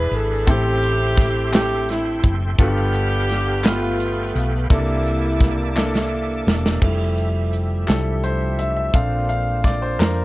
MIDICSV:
0, 0, Header, 1, 6, 480
1, 0, Start_track
1, 0, Key_signature, -1, "major"
1, 0, Tempo, 705882
1, 321, Time_signature, 6, 3, 24, 8
1, 6969, End_track
2, 0, Start_track
2, 0, Title_t, "Tonewheel organ"
2, 0, Program_c, 0, 16
2, 0, Note_on_c, 0, 71, 68
2, 0, Note_on_c, 0, 74, 60
2, 0, Note_on_c, 0, 76, 59
2, 0, Note_on_c, 0, 83, 70
2, 315, Note_off_c, 0, 74, 0
2, 315, Note_off_c, 0, 83, 0
2, 316, Note_off_c, 0, 71, 0
2, 324, Note_on_c, 0, 84, 72
2, 326, Note_on_c, 0, 69, 71
2, 326, Note_on_c, 0, 79, 62
2, 1740, Note_off_c, 0, 76, 0
2, 1747, Note_off_c, 0, 84, 0
2, 1748, Note_off_c, 0, 79, 0
2, 1759, Note_on_c, 0, 83, 74
2, 1760, Note_on_c, 0, 77, 59
2, 1761, Note_on_c, 0, 79, 62
2, 3174, Note_off_c, 0, 69, 0
2, 3184, Note_off_c, 0, 83, 0
2, 3185, Note_off_c, 0, 77, 0
2, 3185, Note_off_c, 0, 79, 0
2, 3199, Note_on_c, 0, 86, 79
2, 3200, Note_on_c, 0, 58, 68
2, 3200, Note_on_c, 0, 76, 61
2, 3202, Note_on_c, 0, 81, 60
2, 4625, Note_off_c, 0, 76, 0
2, 4625, Note_off_c, 0, 86, 0
2, 4626, Note_off_c, 0, 58, 0
2, 4626, Note_off_c, 0, 81, 0
2, 4636, Note_on_c, 0, 53, 52
2, 4636, Note_on_c, 0, 57, 59
2, 4639, Note_on_c, 0, 76, 62
2, 4640, Note_on_c, 0, 67, 54
2, 6065, Note_off_c, 0, 53, 0
2, 6065, Note_off_c, 0, 57, 0
2, 6066, Note_off_c, 0, 76, 0
2, 6067, Note_off_c, 0, 67, 0
2, 6082, Note_on_c, 0, 62, 51
2, 6083, Note_on_c, 0, 58, 57
2, 6084, Note_on_c, 0, 65, 55
2, 6085, Note_on_c, 0, 72, 61
2, 6969, Note_off_c, 0, 58, 0
2, 6969, Note_off_c, 0, 62, 0
2, 6969, Note_off_c, 0, 65, 0
2, 6969, Note_off_c, 0, 72, 0
2, 6969, End_track
3, 0, Start_track
3, 0, Title_t, "Grand piano"
3, 0, Program_c, 1, 0
3, 0, Control_c, 1, 64, 127
3, 0, Note_on_c, 1, 52, 65
3, 0, Note_on_c, 1, 62, 64
3, 0, Note_on_c, 1, 64, 61
3, 0, Note_on_c, 1, 68, 59
3, 0, Note_on_c, 1, 71, 68
3, 114, Note_off_c, 1, 62, 0
3, 114, Note_off_c, 1, 64, 0
3, 114, Note_off_c, 1, 68, 0
3, 140, Note_off_c, 1, 71, 0
3, 296, Note_off_c, 1, 52, 0
3, 318, Note_on_c, 1, 60, 75
3, 318, Note_on_c, 1, 64, 70
3, 320, Note_on_c, 1, 67, 66
3, 321, Note_on_c, 1, 45, 62
3, 324, Note_on_c, 1, 69, 82
3, 329, Control_c, 1, 64, 0
3, 439, Control_c, 1, 64, 127
3, 829, Note_off_c, 1, 60, 0
3, 829, Note_off_c, 1, 64, 0
3, 830, Note_off_c, 1, 67, 0
3, 832, Note_off_c, 1, 69, 0
3, 1013, Note_off_c, 1, 45, 0
3, 1036, Note_on_c, 1, 60, 62
3, 1036, Note_on_c, 1, 64, 60
3, 1041, Note_on_c, 1, 67, 58
3, 1045, Note_on_c, 1, 69, 74
3, 1547, Note_off_c, 1, 60, 0
3, 1547, Note_off_c, 1, 64, 0
3, 1550, Note_off_c, 1, 67, 0
3, 1552, Note_off_c, 1, 69, 0
3, 1759, Note_on_c, 1, 59, 71
3, 1761, Note_on_c, 1, 43, 61
3, 1761, Note_on_c, 1, 65, 65
3, 1761, Note_on_c, 1, 67, 68
3, 1766, Note_on_c, 1, 69, 82
3, 1769, Control_c, 1, 64, 0
3, 1907, Control_c, 1, 64, 127
3, 2269, Note_off_c, 1, 59, 0
3, 2270, Note_off_c, 1, 65, 0
3, 2270, Note_off_c, 1, 67, 0
3, 2272, Note_off_c, 1, 69, 0
3, 2453, Note_off_c, 1, 43, 0
3, 2473, Note_on_c, 1, 59, 66
3, 2475, Note_on_c, 1, 65, 59
3, 2477, Note_on_c, 1, 67, 59
3, 2481, Note_on_c, 1, 71, 74
3, 2986, Note_off_c, 1, 59, 0
3, 2986, Note_off_c, 1, 65, 0
3, 2988, Note_off_c, 1, 67, 0
3, 2989, Note_off_c, 1, 71, 0
3, 3195, Note_on_c, 1, 58, 74
3, 3197, Note_on_c, 1, 62, 65
3, 3200, Note_on_c, 1, 64, 67
3, 3201, Note_on_c, 1, 48, 60
3, 3202, Note_on_c, 1, 69, 80
3, 3208, Control_c, 1, 64, 0
3, 3335, Control_c, 1, 64, 127
3, 3707, Note_off_c, 1, 58, 0
3, 3708, Note_off_c, 1, 62, 0
3, 3709, Note_off_c, 1, 64, 0
3, 3710, Note_off_c, 1, 69, 0
3, 3893, Note_off_c, 1, 48, 0
3, 3911, Note_on_c, 1, 58, 75
3, 3915, Note_on_c, 1, 62, 73
3, 3919, Note_on_c, 1, 64, 74
3, 3920, Note_on_c, 1, 69, 86
3, 4425, Note_off_c, 1, 58, 0
3, 4427, Note_off_c, 1, 62, 0
3, 4429, Note_off_c, 1, 64, 0
3, 4430, Note_off_c, 1, 69, 0
3, 4636, Note_on_c, 1, 55, 44
3, 4637, Note_on_c, 1, 57, 42
3, 4646, Note_on_c, 1, 64, 49
3, 4649, Control_c, 1, 64, 0
3, 4765, Control_c, 1, 64, 127
3, 4957, Note_off_c, 1, 55, 0
3, 4958, Note_off_c, 1, 57, 0
3, 4962, Note_off_c, 1, 64, 0
3, 5352, Note_on_c, 1, 55, 41
3, 5353, Note_on_c, 1, 57, 39
3, 5357, Note_on_c, 1, 69, 74
3, 5359, Note_on_c, 1, 64, 46
3, 5572, Note_off_c, 1, 55, 0
3, 5572, Note_off_c, 1, 57, 0
3, 5576, Note_off_c, 1, 64, 0
3, 5601, Note_on_c, 1, 72, 72
3, 5606, Note_off_c, 1, 69, 0
3, 5824, Note_off_c, 1, 72, 0
3, 5839, Note_on_c, 1, 76, 81
3, 5951, Note_off_c, 1, 76, 0
3, 5961, Note_on_c, 1, 76, 79
3, 6076, Note_on_c, 1, 69, 45
3, 6082, Note_on_c, 1, 77, 85
3, 6083, Note_on_c, 1, 60, 43
3, 6084, Note_off_c, 1, 76, 0
3, 6084, Note_on_c, 1, 62, 53
3, 6088, Control_c, 1, 64, 0
3, 6225, Control_c, 1, 64, 127
3, 6307, Note_off_c, 1, 77, 0
3, 6317, Note_on_c, 1, 77, 84
3, 6559, Note_on_c, 1, 74, 84
3, 6567, Note_off_c, 1, 77, 0
3, 6672, Note_off_c, 1, 74, 0
3, 6679, Note_on_c, 1, 72, 70
3, 6794, Note_on_c, 1, 70, 78
3, 6804, Note_off_c, 1, 72, 0
3, 6969, Note_off_c, 1, 60, 0
3, 6969, Note_off_c, 1, 62, 0
3, 6969, Note_off_c, 1, 69, 0
3, 6969, Note_off_c, 1, 70, 0
3, 6969, End_track
4, 0, Start_track
4, 0, Title_t, "Saxophone section"
4, 0, Program_c, 2, 65
4, 0, Note_on_c, 2, 68, 76
4, 0, Note_on_c, 2, 71, 91
4, 91, Note_off_c, 2, 71, 0
4, 103, Note_on_c, 2, 69, 84
4, 305, Note_off_c, 2, 68, 0
4, 332, Note_off_c, 2, 69, 0
4, 340, Note_on_c, 2, 67, 99
4, 343, Note_on_c, 2, 60, 74
4, 343, Note_on_c, 2, 64, 74
4, 1024, Note_off_c, 2, 60, 0
4, 1024, Note_off_c, 2, 64, 0
4, 1044, Note_off_c, 2, 67, 0
4, 1052, Note_on_c, 2, 67, 90
4, 1270, Note_off_c, 2, 67, 0
4, 1294, Note_on_c, 2, 64, 79
4, 1582, Note_off_c, 2, 64, 0
4, 1777, Note_on_c, 2, 62, 71
4, 1778, Note_on_c, 2, 59, 70
4, 1778, Note_on_c, 2, 67, 98
4, 2461, Note_off_c, 2, 59, 0
4, 2461, Note_off_c, 2, 62, 0
4, 2461, Note_off_c, 2, 67, 0
4, 2488, Note_on_c, 2, 59, 65
4, 2490, Note_on_c, 2, 65, 88
4, 2491, Note_on_c, 2, 57, 67
4, 2964, Note_off_c, 2, 65, 0
4, 2983, Note_on_c, 2, 65, 71
4, 3086, Note_off_c, 2, 65, 0
4, 3176, Note_off_c, 2, 59, 0
4, 3177, Note_off_c, 2, 57, 0
4, 3213, Note_on_c, 2, 55, 61
4, 3214, Note_on_c, 2, 58, 60
4, 3217, Note_on_c, 2, 64, 84
4, 4139, Note_off_c, 2, 55, 0
4, 4139, Note_off_c, 2, 58, 0
4, 4141, Note_off_c, 2, 64, 0
4, 6969, End_track
5, 0, Start_track
5, 0, Title_t, "Fingered electric bass"
5, 0, Program_c, 3, 33
5, 77, Note_on_c, 3, 32, 96
5, 299, Note_off_c, 3, 32, 0
5, 320, Note_on_c, 3, 33, 91
5, 1492, Note_off_c, 3, 33, 0
5, 1521, Note_on_c, 3, 30, 81
5, 1741, Note_off_c, 3, 30, 0
5, 1760, Note_on_c, 3, 31, 97
5, 2932, Note_off_c, 3, 31, 0
5, 2960, Note_on_c, 3, 35, 91
5, 3180, Note_off_c, 3, 35, 0
5, 3198, Note_on_c, 3, 36, 95
5, 4372, Note_off_c, 3, 36, 0
5, 4399, Note_on_c, 3, 28, 87
5, 4620, Note_off_c, 3, 28, 0
5, 4638, Note_on_c, 3, 29, 85
5, 5332, Note_off_c, 3, 29, 0
5, 5362, Note_on_c, 3, 36, 77
5, 6055, Note_off_c, 3, 36, 0
5, 6077, Note_on_c, 3, 34, 84
5, 6773, Note_off_c, 3, 34, 0
5, 6797, Note_on_c, 3, 41, 87
5, 6969, Note_off_c, 3, 41, 0
5, 6969, End_track
6, 0, Start_track
6, 0, Title_t, "Drums"
6, 89, Note_on_c, 9, 42, 50
6, 157, Note_off_c, 9, 42, 0
6, 323, Note_on_c, 9, 36, 100
6, 323, Note_on_c, 9, 42, 81
6, 391, Note_off_c, 9, 36, 0
6, 391, Note_off_c, 9, 42, 0
6, 564, Note_on_c, 9, 42, 50
6, 632, Note_off_c, 9, 42, 0
6, 799, Note_on_c, 9, 36, 88
6, 802, Note_on_c, 9, 42, 44
6, 813, Note_on_c, 9, 38, 34
6, 867, Note_off_c, 9, 36, 0
6, 870, Note_off_c, 9, 42, 0
6, 881, Note_off_c, 9, 38, 0
6, 1041, Note_on_c, 9, 42, 80
6, 1043, Note_on_c, 9, 39, 85
6, 1053, Note_on_c, 9, 38, 108
6, 1109, Note_off_c, 9, 42, 0
6, 1111, Note_off_c, 9, 39, 0
6, 1121, Note_off_c, 9, 38, 0
6, 1284, Note_on_c, 9, 42, 55
6, 1296, Note_on_c, 9, 38, 35
6, 1352, Note_off_c, 9, 42, 0
6, 1364, Note_off_c, 9, 38, 0
6, 1521, Note_on_c, 9, 36, 84
6, 1521, Note_on_c, 9, 42, 55
6, 1589, Note_off_c, 9, 36, 0
6, 1589, Note_off_c, 9, 42, 0
6, 1757, Note_on_c, 9, 42, 76
6, 1759, Note_on_c, 9, 36, 108
6, 1825, Note_off_c, 9, 42, 0
6, 1827, Note_off_c, 9, 36, 0
6, 1999, Note_on_c, 9, 42, 48
6, 2067, Note_off_c, 9, 42, 0
6, 2239, Note_on_c, 9, 42, 45
6, 2250, Note_on_c, 9, 38, 34
6, 2307, Note_off_c, 9, 42, 0
6, 2318, Note_off_c, 9, 38, 0
6, 2474, Note_on_c, 9, 42, 84
6, 2477, Note_on_c, 9, 39, 89
6, 2486, Note_on_c, 9, 38, 113
6, 2542, Note_off_c, 9, 42, 0
6, 2545, Note_off_c, 9, 39, 0
6, 2554, Note_off_c, 9, 38, 0
6, 2720, Note_on_c, 9, 42, 55
6, 2788, Note_off_c, 9, 42, 0
6, 2964, Note_on_c, 9, 42, 53
6, 3032, Note_off_c, 9, 42, 0
6, 3197, Note_on_c, 9, 42, 83
6, 3198, Note_on_c, 9, 36, 105
6, 3265, Note_off_c, 9, 42, 0
6, 3266, Note_off_c, 9, 36, 0
6, 3440, Note_on_c, 9, 42, 46
6, 3508, Note_off_c, 9, 42, 0
6, 3675, Note_on_c, 9, 36, 87
6, 3677, Note_on_c, 9, 42, 47
6, 3688, Note_on_c, 9, 38, 34
6, 3743, Note_off_c, 9, 36, 0
6, 3745, Note_off_c, 9, 42, 0
6, 3756, Note_off_c, 9, 38, 0
6, 3921, Note_on_c, 9, 39, 91
6, 3929, Note_on_c, 9, 38, 58
6, 3989, Note_off_c, 9, 39, 0
6, 3997, Note_off_c, 9, 38, 0
6, 4049, Note_on_c, 9, 38, 60
6, 4117, Note_off_c, 9, 38, 0
6, 4407, Note_on_c, 9, 38, 97
6, 4475, Note_off_c, 9, 38, 0
6, 4527, Note_on_c, 9, 38, 88
6, 4595, Note_off_c, 9, 38, 0
6, 4634, Note_on_c, 9, 49, 73
6, 4637, Note_on_c, 9, 36, 94
6, 4702, Note_off_c, 9, 49, 0
6, 4705, Note_off_c, 9, 36, 0
6, 4879, Note_on_c, 9, 42, 43
6, 4947, Note_off_c, 9, 42, 0
6, 5120, Note_on_c, 9, 42, 53
6, 5188, Note_off_c, 9, 42, 0
6, 5358, Note_on_c, 9, 39, 74
6, 5358, Note_on_c, 9, 42, 70
6, 5370, Note_on_c, 9, 38, 97
6, 5426, Note_off_c, 9, 39, 0
6, 5426, Note_off_c, 9, 42, 0
6, 5438, Note_off_c, 9, 38, 0
6, 5600, Note_on_c, 9, 42, 48
6, 5668, Note_off_c, 9, 42, 0
6, 5841, Note_on_c, 9, 42, 60
6, 5909, Note_off_c, 9, 42, 0
6, 6076, Note_on_c, 9, 42, 73
6, 6078, Note_on_c, 9, 36, 95
6, 6144, Note_off_c, 9, 42, 0
6, 6146, Note_off_c, 9, 36, 0
6, 6320, Note_on_c, 9, 42, 43
6, 6388, Note_off_c, 9, 42, 0
6, 6556, Note_on_c, 9, 36, 78
6, 6560, Note_on_c, 9, 42, 58
6, 6570, Note_on_c, 9, 38, 31
6, 6624, Note_off_c, 9, 36, 0
6, 6628, Note_off_c, 9, 42, 0
6, 6638, Note_off_c, 9, 38, 0
6, 6800, Note_on_c, 9, 42, 70
6, 6801, Note_on_c, 9, 39, 72
6, 6812, Note_on_c, 9, 38, 99
6, 6868, Note_off_c, 9, 42, 0
6, 6869, Note_off_c, 9, 39, 0
6, 6880, Note_off_c, 9, 38, 0
6, 6969, End_track
0, 0, End_of_file